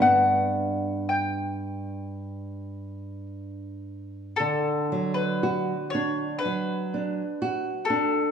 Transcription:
<<
  \new Staff \with { instrumentName = "Mandolin" } { \time 4/4 \key g \major \tempo 4 = 58 fis''4 g''2 r4 | \key d \major a'8. b'8. cis''8 b'4. a'8 | }
  \new Staff \with { instrumentName = "Nylon-string guitar" } { \time 4/4 \key g \major <g, b d'>1 | \key d \major d8 fis8 fis'8 d'8 fis8 d'8 fis'8 d'8 | }
>>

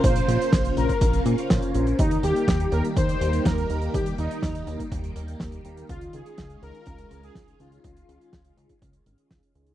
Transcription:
<<
  \new Staff \with { instrumentName = "Analog polysynth" } { \time 4/4 \key ees \mixolydian \tempo 4 = 123 c''4. bes'4 r4. | ees'8 g'4 bes'8 c''4 bes'4 | g'8 ees'4. r2 | f'8 aes'4 bes'4~ bes'16 aes'8. f'8~ |
f'2. r4 | }
  \new Staff \with { instrumentName = "Analog polysynth" } { \time 4/4 \key ees \mixolydian r8 <des' f' bes' c''>8 r8 <des' f' bes' c''>16 r8. <des' f' bes' c''>16 <des' f' bes' c''>8. <des' f' bes' c''>8 | r8 <bes ees' bes'>8 r8 <bes ees' g' bes'>16 r8. <bes ees' g' bes'>16 <bes ees' g' bes'>8. <bes ees' g' bes'>8 | r8 <bes ees' g' bes'>8 r8 <bes ees' g' bes'>16 r8. <bes ees' g' bes'>16 <bes ees' g' bes'>8. <bes ees' g' bes'>8 | r8 <des' ees' f' aes'>8 r8 <des' ees' f' aes'>16 r8. <des' ees' f' aes'>16 <des' ees' f'>8. <des' ees' f' aes'>8 |
r8 <des' ees' f' aes'>8 r8 <des' ees' f' aes'>16 r8. <des' ees' f' aes'>16 <des' ees' f' aes'>8. <des' ees' f' aes'>8 | }
  \new Staff \with { instrumentName = "String machine" } { \time 4/4 \key ees \mixolydian << { <bes des' f'>1 | <g bes g'>1~ | <g bes g'>1 | <aes des' f'>1~ |
<aes des' f'>1 | } \\ { des1 | ees1~ | ees1~ | ees1~ |
ees1 | } >> }
  \new Staff \with { instrumentName = "Analog synth bass" } { \clef bass \time 4/4 \key ees \mixolydian bes,,8 bes,,8 bes,,8 bes,,8 bes,,8 bes,8 bes,,8 bes,,8 | ees,8 ees,8 ees,8 ees,8 ees,8 ees,8 ees,8 ees,8 | ees,8 ees,8 ees,8 ees,8 ees,8 ees,8 ees,8 ees,8 | des,8 des,8 des,8 des,8 des,8 des,8 des,8 des,8 |
des,8 des,8 des,8 des,8 des,8 aes,,8 des,8 des,8 | }
  \new DrumStaff \with { instrumentName = "Drums" } \drummode { \time 4/4 <hh bd>16 hh16 hh16 hh16 <hh bd sn>16 hh16 hh16 <hh bd>16 <hh bd>16 hh16 hh16 hh16 <hh bd sn>16 hh16 hh16 hh16 | <hh bd>16 hh16 hh16 hh16 <hh bd sn>16 hh16 hh16 hh16 <hh bd>16 hh16 hh16 hh16 <hh bd sn>16 hh16 hh16 hh16 | <hh bd>16 hh16 hh16 hh16 <hh bd sn>16 hh16 hh16 <hh bd>16 <hh bd>16 hh16 hh16 hh16 <hh bd sn>16 hh16 hh16 hh16 | <hh bd>16 hh16 hh16 hh16 <hh bd sn>16 hh16 hh16 hh16 <hh bd>16 hh16 hh16 hh16 <hh bd sn>16 hh16 hh16 hh16 |
<hh bd>16 hh16 hh16 hh16 <hh bd sn>16 hh16 hh16 <hh bd>16 <hh bd>16 hh16 hh16 hh16 <hh bd sn>16 hh16 hh16 hh16 | }
>>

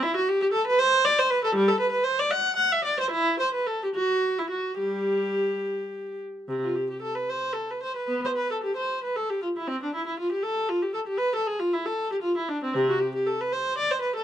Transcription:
\new Staff \with { instrumentName = "Viola" } { \time 6/8 \key g \major \tempo 4. = 78 << { e'16 fis'16 g'16 g'16 a'16 b'16 c''8 d''16 c''16 b'16 a'16 | g16 a'16 b'16 b'16 c''16 d''16 fis''8 fis''16 e''16 d''16 c''16 | e'8 c''16 b'16 a'16 g'16 fis'8. e'16 fis'8 | g'2~ g'8 r8 |
\key c \major c16 f'16 g'16 g'16 a'16 b'16 c''8 a'16 b'16 c''16 b'16 | b16 c''16 b'16 a'16 g'16 c''8 b'16 a'16 g'16 f'16 e'16 | c'16 d'16 e'16 e'16 f'16 g'16 a'8 f'16 g'16 a'16 g'16 | b'16 a'16 aes'16 f'16 e'16 a'8 g'16 f'16 e'16 d'16 c'16 |
\key c \lydian c16 fis'16 g'16 g'16 a'16 b'16 c''8 d''16 c''16 b'16 a'16 | } \\ { r2. | r2. | r2. | g4. r4. |
r2. | r2. | r2. | r2. |
r2. | } >> }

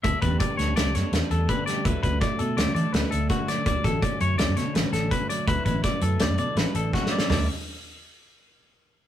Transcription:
<<
  \new Staff \with { instrumentName = "Clean electric guitar" } { \time 5/4 \key d \major \tempo 4 = 166 e''8 b'8 d''8 cis''8 d''8 cis''8 b'8 a'8 b'8 d''8 | b'8 b'8 d''8 a'8 d''8 d''8 b'8 a'8 fis'8 d''8 | d''8 a'8 d''8 cis''8 d''8 cis''8 b'8 a'8 b'8 d''8 | b'8 b'8 d''8 a'8 d''8 d''8 b'8 a'8 fis'8 d''8 |
d''8 r1 r8 | }
  \new Staff \with { instrumentName = "Clean electric guitar" } { \clef bass \time 5/4 \key d \major << { d'8 g8 b8 d'4. b4 d'8 g8 | <d fis a fis'>8 fis8 a8 fis'4. a4 fis'8 fis8 | fis'8 fis8 cis'8 fis'4. cis'4 fis'8 fis8 | e'8 fis8 b8 e'4. b4 e'8 fis8 |
<d fis b e'>8 r1 r8 | } \\ { d,2 d,8 d4 d8 d,4 | d,2 d,8 d4 d8 d,4 | d,2 a,8 d4 d8 d,4 | d,2 a,8 d4 d8 d,4 |
d,8 r1 r8 | } >> }
  \new Staff \with { instrumentName = "Fingered electric bass" } { \clef bass \time 5/4 \key d \major d,16 r16 e,8 r8 d,8 d,16 cis,16 fis,16 r16 e,16 r16 e,8 r4 | d,16 r16 d,8 r8 b,8 d,16 cis16 e16 r16 d,16 r16 d,8 r4 | d,16 r16 a,,8 r8 fis,8 d,16 fis,16 b,16 r16 a,,16 r16 a,,8 r4 | d,16 r16 a,,8 r8 fis,8 d,16 fis,16 b,16 r16 a,,16 r16 a,,8 r4 |
d,8 r1 r8 | }
  \new DrumStaff \with { instrumentName = "Drums" } \drummode { \time 5/4 <hh bd>8 <hh bd>8 <hh bd>8 <hh sn>8 <hh sn>8 <hh sn>8 <hh sn>8 hh8 <hh bd>8 <hh sn>8 | <hh bd>8 <hh bd>8 <hh bd sn>8 hh8 <hh sn>8 hh8 <hh sn>8 hh8 <hh bd sn>8 <hh sn>8 | <hh bd>8 <hh bd>8 <hh bd>8 hh8 <hh sn>8 <hh sn>8 <hh sn>8 <hh sn>8 <hh bd>8 hh8 | <hh bd>8 <hh bd>8 <hh bd sn>8 hh8 <hh sn>8 hh8 <hh sn>8 hh8 \tuplet 3/2 { <bd sn>8 sn8 sn8 } |
<hho sn tomfh>4 r4 r4 r4 r4 | }
>>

